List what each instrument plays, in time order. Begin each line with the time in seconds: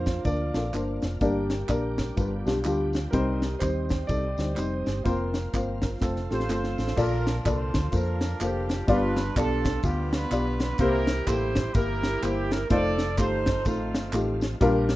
Already playing: fingered electric bass F2, french horn section F3 A#3 D4 F4, tonewheel organ A#3 D4 F4, grand piano C5
0.06 kick, snare, closed hi-hat, tambourine
0.25 fingered electric bass D2, upright piano A#3 D4 F4 A#4, grand piano D5, kick, closed hi-hat, tambourine
0.54 fingered electric bass A#1, upright piano A#3 D4 F4 A4, snare, closed hi-hat, tambourine
0.73 fingered electric bass G1, upright piano A#3 D4 F4 C5, clap, closed hi-hat, tambourine
1.02 fingered electric bass F1, snare, closed hi-hat, tambourine
1.21 fingered electric bass G1, upright piano G2 A#3 D4 G4 D5, french horn section G3 D4 G4, tonewheel organ G4, grand piano A#4, kick, closed hi-hat, tambourine
1.50 snare, closed hi-hat, tambourine
1.68 fingered electric bass A#1, upright piano A#3 D4 G4 D5, grand piano A#4, kick, clap, closed hi-hat, tambourine
1.98 kick, snare, closed hi-hat, tambourine
2.16 fingered electric bass G1, upright piano G2 G3 D4 F4 B4, tonewheel organ F3 G3 B3, french horn section B3 F4, kick, closed hi-hat, tambourine
2.45 fingered electric bass B1, upright piano G3 D4 F4 G4, snare, closed hi-hat, tambourine
2.65 fingered electric bass D2, upright piano G3 D4 F4 G4, clap, closed hi-hat, tambourine
2.93 snare, closed hi-hat, tambourine
3.11 fingered electric bass C2, upright piano C3 G3 C4 D#4 C5, tonewheel organ C4 D#4, french horn section C4 D#4 G4, grand piano A#4, kick, closed hi-hat, tambourine
3.42 snare, closed hi-hat, tambourine
3.59 fingered electric bass D#2, upright piano G3 C4 D#4 C5, grand piano C5, kick, clap, closed hi-hat, tambourine
3.89 kick, snare, closed hi-hat, tambourine
4.07 fingered electric bass C2, upright piano G3 C4 D#4 A4, grand piano D5, kick, closed hi-hat, tambourine
4.38 fingered electric bass D2, upright piano G3 C4 D#4 C5, snare, closed hi-hat, tambourine
4.55 fingered electric bass F1, upright piano G3 C4 D#4 C5, grand piano C5, clap, closed hi-hat, tambourine
4.86 fingered electric bass G1, snare, closed hi-hat, tambourine
5.04 fingered electric bass F1, french horn section F3 A#3 F4, upright piano A#3 C4 F4 C5, tonewheel organ A#3 F4, grand piano A#4, kick, closed hi-hat, tambourine
5.34 snare, closed hi-hat, tambourine
5.53 fingered electric bass G1, upright piano A#3 C4 F4 C5, kick, clap, closed hi-hat, tambourine
5.82 grand piano A#4, kick, snare, closed hi-hat, tambourine
6.00 fingered electric bass F1, upright piano A3 C4 F4 C5, french horn section A3 F4, tonewheel organ A3 C4, grand piano A4, kick, snare, clap, tambourine
6.16 snare
6.30 fingered electric bass A1, upright piano A3 C4 F4 G4, horn section F4 A4 C5, snare, tambourine
6.40 snare
6.49 fingered electric bass G1, upright piano A3 C4 F4 A4, snare, clap, tambourine
6.64 snare
6.78 fingered electric bass A1, snare, tambourine
6.88 snare
6.96 fingered electric bass A#1, upright piano A#2 A#3 F4 A4 D5, tonewheel organ D3 F3 A#3 F4, horn section D4 F4 A#4, kick, crash, tambourine
7.27 horn section A#4, snare, closed hi-hat, tambourine
7.44 fingered electric bass C2, upright piano A#3 F4 A4 D5, horn section F4 A4 C5, kick, clap, closed hi-hat, tambourine
7.74 fingered electric bass D2, kick, snare, closed hi-hat, tambourine
7.92 fingered electric bass F2, upright piano A#3 F4 A4 C5, horn section D4 F4 A#4, kick, closed hi-hat, tambourine
8.21 snare, closed hi-hat, tambourine
8.40 fingered electric bass F1, upright piano A#3 F4 A4 C5, horn section G4, clap, closed hi-hat, tambourine
8.69 horn section G4, snare, closed hi-hat, tambourine
8.87 fingered electric bass G1, upright piano G2 B3 F4 G4 D5, tonewheel organ D3 G3 B3 F4, horn section D4 F4 B4, kick, closed hi-hat, tambourine
9.16 snare, closed hi-hat, tambourine
9.36 fingered electric bass B1, upright piano B3 F4 G4 D5, horn section D4 F4 A4, kick, clap, closed hi-hat, tambourine
9.65 kick, snare, closed hi-hat, tambourine
9.83 fingered electric bass D2, upright piano B3 F4 G4 F5, horn section B3 D4 G4, kick, closed hi-hat, tambourine
10.13 horn section D4 F4 B4, snare, closed hi-hat, tambourine
10.31 fingered electric bass B1, upright piano B3 F4 G4 D5, clap, closed hi-hat, tambourine
10.60 horn section B4, snare, closed hi-hat, tambourine
10.78 fingered electric bass C2, upright piano C3 A#3 E4 G4 C5, tonewheel organ E3 A#3 C4 G4, horn section E4 G4 A#4, kick, closed hi-hat, tambourine
11.07 snare, closed hi-hat, tambourine
11.27 fingered electric bass A1, upright piano A#3 E4 G4 A4, horn section E4 G4 C5, kick, clap, closed hi-hat, tambourine
11.55 kick, snare, closed hi-hat, tambourine
11.73 fingered electric bass G1, upright piano A#3 E4 G4 A#4, horn section E4 G4 A#4, kick, closed hi-hat, tambourine
12.03 snare, closed hi-hat, tambourine
12.22 fingered electric bass G1, upright piano A#3 E4 G4 C5, horn section G4, clap, closed hi-hat, tambourine
12.51 horn section A#4, snare, closed hi-hat, tambourine
12.70 fingered electric bass F1, tonewheel organ D#3 F3 A3 F4, upright piano A3 D#4 F4 C5, horn section A4 D5, kick, closed hi-hat, tambourine
12.98 snare, closed hi-hat, tambourine
13.18 fingered electric bass G1, upright piano A3 D#4 F4 G4, horn section D#4 A4 C5, kick, clap, closed hi-hat, tambourine
13.46 kick, snare, closed hi-hat, tambourine
13.65 fingered electric bass A1, upright piano A3 D#4 F4 C5, horn section A3 C4 F4, kick, closed hi-hat, tambourine
13.94 fingered electric bass G1, snare, closed hi-hat, tambourine
14.13 fingered electric bass A1, upright piano A3 D#4 F4 G4, clap, closed hi-hat, tambourine
14.41 snare, closed hi-hat, tambourine
14.60 fingered electric bass A#1, upright piano A#2 G3 D4 F4 A#4, tonewheel organ G3 A#3 D4 G4, kick, closed hi-hat, tambourine
14.89 snare, closed hi-hat, tambourine